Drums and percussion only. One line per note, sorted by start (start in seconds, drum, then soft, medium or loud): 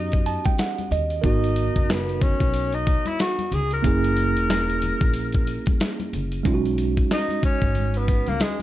0.12 kick medium
0.12 closed hi-hat medium
0.12 shaker soft
0.26 closed hi-hat medium
0.26 shaker soft
0.45 kick medium
0.45 closed hi-hat medium
0.45 high conga medium
0.45 shaker medium
0.58 snare loud
0.58 closed hi-hat medium
0.58 shaker medium
0.78 closed hi-hat medium
0.78 high conga medium
0.78 shaker soft
0.92 closed hi-hat medium
0.92 low conga medium
0.92 shaker soft
1.10 closed hi-hat medium
1.10 shaker soft
1.24 kick loud
1.24 closed hi-hat medium
1.24 shaker medium
1.44 closed hi-hat medium
1.44 shaker soft
1.56 closed hi-hat medium
1.56 shaker soft
1.76 kick medium
1.76 closed hi-hat soft
1.76 shaker soft
1.89 snare loud
1.89 closed hi-hat medium
1.89 shaker medium
2.09 closed hi-hat soft
2.09 shaker soft
2.22 kick loud
2.22 closed hi-hat medium
2.22 high conga soft
2.22 low conga medium
2.22 shaker soft
2.40 kick medium
2.40 closed hi-hat soft
2.40 shaker soft
2.54 closed hi-hat medium
2.54 shaker medium
2.72 closed hi-hat soft
2.72 shaker soft
2.86 kick loud
2.86 closed hi-hat medium
2.86 shaker soft
3.06 closed hi-hat medium
3.06 high conga medium
3.06 shaker soft
3.19 snare loud
3.19 closed hi-hat medium
3.19 shaker medium
3.39 closed hi-hat soft
3.39 high conga medium
3.39 shaker soft
3.52 closed hi-hat medium
3.52 low conga medium
3.52 shaker soft
3.71 closed hi-hat medium
3.71 shaker soft
3.84 kick loud
3.84 closed hi-hat loud
3.84 shaker medium
4.04 closed hi-hat medium
4.04 shaker soft
4.17 closed hi-hat medium
4.17 shaker medium
4.37 closed hi-hat medium
4.37 shaker soft
4.50 snare loud
4.50 closed hi-hat loud
4.50 shaker medium
4.70 closed hi-hat soft
4.70 shaker soft
4.82 closed hi-hat medium
4.82 high conga soft
4.82 low conga medium
4.82 shaker soft
5.01 kick medium
5.01 closed hi-hat soft
5.01 shaker soft
5.14 closed hi-hat medium
5.14 shaker medium
5.32 kick medium
5.32 closed hi-hat soft
5.32 shaker soft
5.47 closed hi-hat medium
5.47 shaker soft
5.66 kick medium
5.66 closed hi-hat medium
5.66 high conga medium
5.66 shaker soft
5.80 snare loud
5.80 closed hi-hat medium
5.80 shaker medium
6.00 closed hi-hat soft
6.00 high conga medium
6.00 shaker soft
6.13 closed hi-hat medium
6.13 low conga medium
6.13 shaker soft
6.32 closed hi-hat medium
6.32 shaker soft
6.45 kick loud
6.45 closed hi-hat medium
6.45 shaker medium
6.64 closed hi-hat medium
6.64 shaker soft
6.78 closed hi-hat medium
6.78 shaker medium
6.97 kick medium
6.97 closed hi-hat medium
6.97 shaker soft
7.10 snare loud
7.10 closed hi-hat medium
7.10 shaker medium
7.29 closed hi-hat soft
7.29 high conga medium
7.29 shaker soft
7.42 kick medium
7.42 closed hi-hat medium
7.42 low conga medium
7.42 shaker soft
7.61 kick medium
7.61 closed hi-hat soft
7.61 shaker soft
7.75 closed hi-hat medium
7.75 high conga soft
7.75 low conga medium
7.75 shaker medium
7.94 closed hi-hat medium
7.94 shaker soft
8.08 kick medium
8.08 closed hi-hat medium
8.08 shaker soft
8.26 closed hi-hat soft
8.26 high conga medium
8.26 shaker soft
8.40 snare loud
8.40 closed hi-hat medium
8.40 shaker medium
8.59 high conga medium
8.59 shaker soft